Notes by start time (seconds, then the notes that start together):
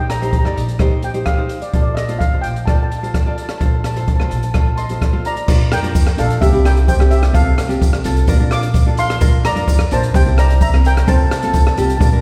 Already playing: A#1
0.10 A#5, cross-stick, closed hi-hat
0.22 D#4 G4 C5 A#5, closed hi-hat
0.31 A#5, kick, closed hi-hat
0.39 A#5
0.44 G2 D#4 G4 D5 A#5, cross-stick
0.54 A#1 A#5, closed hi-hat
0.68 closed hi-hat
0.79 D#4 G4 C5, kick, cross-stick, closed hi-hat
1.03 G5, closed hi-hat
1.14 D#4 G4 C5, closed hi-hat
1.26 F5, kick, cross-stick, closed hi-hat
1.38 D#4 G4 C5
1.49 closed hi-hat
1.62 D5, closed hi-hat
1.73 A#1 F4 A4 C5, kick, closed hi-hat
1.82 D5
1.95 D#5, cross-stick, closed hi-hat
2.09 F4 A4 C5, closed hi-hat
2.19 F5, kick, closed hi-hat
2.32 C2 F4 A4 C5
2.42 A#1 G5, closed hi-hat
2.56 closed hi-hat
2.66 F4 A4 D5 A5, kick, cross-stick, closed hi-hat
2.75 A5
2.83 A5
2.91 A5, closed hi-hat
2.98 A5
3.03 F4 A4 C5 A5, closed hi-hat
3.14 A5, kick, cross-stick, closed hi-hat
3.21 A5
3.26 F4 A4 D5 A5
3.36 A5, closed hi-hat
3.43 A5
3.49 A5, cross-stick, closed hi-hat
3.58 A#1 F4 A4 C5 A5, kick, closed hi-hat
3.66 A5
3.74 A5
3.80 A5, cross-stick, closed hi-hat
3.86 A5
3.94 F4 A4 C5 A5, closed hi-hat
4.01 A5
4.08 A5, kick, closed hi-hat
4.16 C2 A5, cross-stick
4.21 F4 A4 C5 A5
4.30 A#1 A5, closed hi-hat
4.37 A5
4.43 A5, closed hi-hat
4.52 F4 A4 C5 A5, kick, cross-stick, closed hi-hat
4.60 A5
4.67 A5
4.76 D#5 A5 C6, closed hi-hat
4.89 F4 A4 C5, closed hi-hat
5.01 kick, cross-stick, closed hi-hat
5.13 F4 A4 C5
5.25 D5 A#5, closed hi-hat
5.37 closed hi-hat
5.48 A#1 D4 F4 A#4, kick, crash, shaker
5.72 F2 A#4 G5, cross-stick, closed hi-hat, shaker
5.83 D4 F4 A#4, closed hi-hat, shaker
5.95 kick, closed hi-hat, shaker
6.07 cross-stick, shaker
6.17 A#1 D4 F4 A4 F5, closed hi-hat, shaker
6.30 closed hi-hat
6.41 C2 C4 E4 G4 E5, kick, closed hi-hat, shaker
6.52 C4 E4 G4, shaker
6.65 A#4 G5, cross-stick, closed hi-hat, shaker
6.77 closed hi-hat
6.88 C5 G5, kick, closed hi-hat, shaker
6.99 C4 E4 G4, cross-stick
7.11 G4 E5, closed hi-hat, shaker
7.23 cross-stick, closed hi-hat, shaker
7.33 C2 C4 F4 A4 F5, kick, closed hi-hat, shaker
7.58 C2, cross-stick, closed hi-hat, shaker
7.68 C4 F4 G4, closed hi-hat, shaker
7.82 kick, closed hi-hat, shaker
7.93 cross-stick, shaker
8.04 C2 C4 F4 A4, closed hi-hat, shaker
8.17 closed hi-hat
8.27 A#1 D4 F4 A#4, kick, closed hi-hat, shaker
8.39 D4 F4 A#4, shaker
8.51 F5 D6, cross-stick, closed hi-hat, shaker
8.63 closed hi-hat
8.74 kick, closed hi-hat, shaker
8.86 D4 F4 A4
8.97 F5 C6, closed hi-hat, shaker
9.10 cross-stick, closed hi-hat, shaker
9.20 A#1 D4 F4 A#4, kick, closed hi-hat, shaker
9.43 F2 D5 A#5, cross-stick, closed hi-hat, shaker
9.55 D4 F4 A#4, closed hi-hat, shaker
9.68 kick, closed hi-hat, shaker
9.79 cross-stick, shaker
9.91 A#1 D4 F4 A#4 C5 A5, closed hi-hat, shaker
10.03 closed hi-hat
10.14 C2 C4 E4 G4 C5 G5, kick, closed hi-hat, shaker
10.25 C4 E4 A#4, shaker
10.38 D5 A#5, cross-stick, closed hi-hat, shaker
10.50 closed hi-hat
10.61 E5 A#5, kick, closed hi-hat, shaker
10.73 C4 E4 A#4, cross-stick
10.85 A#4 G5, closed hi-hat, shaker
10.97 cross-stick, closed hi-hat
11.07 C2 C4 F4 A4 C5 A5, kick, closed hi-hat, shaker
11.17 A5, shaker
11.26 A5
11.30 C2 A5, cross-stick, closed hi-hat, shaker
11.40 C4 F4 A4 A5, closed hi-hat
11.44 shaker
11.49 A5
11.53 A5, kick, closed hi-hat, shaker
11.62 A5
11.67 A5, cross-stick, shaker
11.74 C2 C4 F4 A5, closed hi-hat
11.78 G4 A5, shaker
11.88 A5, closed hi-hat
11.97 A#1 D4 F4 A#4 A5, kick, closed hi-hat
12.02 A5, shaker
12.12 D4 F4 A#4